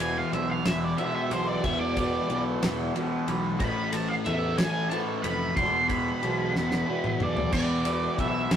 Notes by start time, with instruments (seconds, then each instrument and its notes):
Already playing: picked electric bass E1, distorted electric guitar E2
0.00 distorted electric guitar B2 E3, lead electric guitar G#5, ride
0.18 lead electric guitar F5
0.32 picked electric bass B1, distorted electric guitar E2 B2 E3, lead electric guitar E5, ride
0.50 lead electric guitar F5
0.65 picked electric bass E1, distorted electric guitar B2 E3, lead electric guitar E5, snare, ride
0.84 lead electric guitar D5
0.98 distorted electric guitar E2 B2 E3, lead electric guitar E5, ride
1.15 lead electric guitar E5
1.31 picked electric bass B1, distorted electric guitar B2 E3, lead electric guitar C5, ride
1.47 lead electric guitar D5
1.63 picked electric bass E1, distorted electric guitar E2 B2 E3, lead electric guitar E5, kick, ride
1.80 lead electric guitar D5
1.96 distorted electric guitar B2 E3, kick, ride
2.29 picked electric bass B1, distorted electric guitar E2 B2 E3, ride
2.61 picked electric bass E1, distorted electric guitar B2 E3, snare, ride
2.94 distorted electric guitar E2 B2 E3, ride
3.27 picked electric bass B1, distorted electric guitar B2 E3, ride
3.59 picked electric bass A1, distorted electric guitar A2 E3 A3, lead electric guitar B5, kick, ride
3.93 distorted electric guitar E3 A3, lead electric guitar A5, ride
4.08 lead electric guitar F5
4.25 picked electric bass E2, distorted electric guitar A2 E3 A3, lead electric guitar E5, ride
4.57 picked electric bass A1, distorted electric guitar E3 A3, lead electric guitar G#5, snare, ride
4.89 distorted electric guitar A2 E3 A3, lead electric guitar A5, ride
5.23 picked electric bass F1, distorted electric guitar E3 A3, lead electric guitar B5, ride
5.56 picked electric bass E1, distorted electric guitar E2 B2 E3, lead electric guitar C6, kick, ride
5.88 distorted electric guitar B2 E3, lead electric guitar B5, kick, ride
6.22 picked electric bass B1, distorted electric guitar E2 B2 E3, ride
6.54 picked electric bass E1, distorted electric guitar B2 E3, snare
6.71 snare
6.87 distorted electric guitar E2 B2 E3
7.04 mid tom
7.19 picked electric bass B1, distorted electric guitar B2 E3, lead electric guitar D5, mid tom
7.37 floor tom
7.51 distorted electric guitar E2 B2 E3, picked electric bass E2, lead electric guitar D5, kick, crash
7.85 distorted electric guitar B2 E3, ride
8.17 picked electric bass B1, distorted electric guitar E2 B2 E3, lead electric guitar E5, kick, ride
8.50 picked electric bass E2, distorted electric guitar B2 E3, lead electric guitar E5, snare, ride